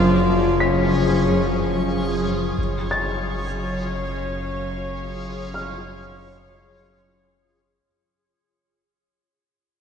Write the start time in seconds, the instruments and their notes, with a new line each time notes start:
Already playing: double bass section F#1, sub bass F#1, cello section F#2, viola section F3 F4, french horn section F3 F4, violin section D4 D5, synth texture F4 G#4 C#6
0.28 cello section F#2
0.60 cello section F#2, viola section F3 C#4, violin section C#4 C#5, grand piano B6
0.94 cello section F#2
1.28 cello section F#2
1.60 cello section F#2
1.93 cello section F#2
2.26 cello section F#2
2.56 double bass section F#1, sub bass F#1, cello section F#2, viola section C#4 C#5, synth texture F4 G#4 C#5, violin section F5
2.91 grand piano A6
5.54 grand piano F6